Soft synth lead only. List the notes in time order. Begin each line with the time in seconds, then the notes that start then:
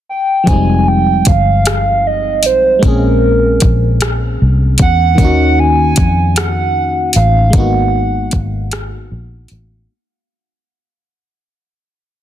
0.09 G5
0.48 G#5
0.88 G5
1.28 F5
2.07 D#5
2.46 C5
2.85 A#4
4.82 F#5
5.59 G#5
6.37 F#5
7.16 F5
7.55 F#5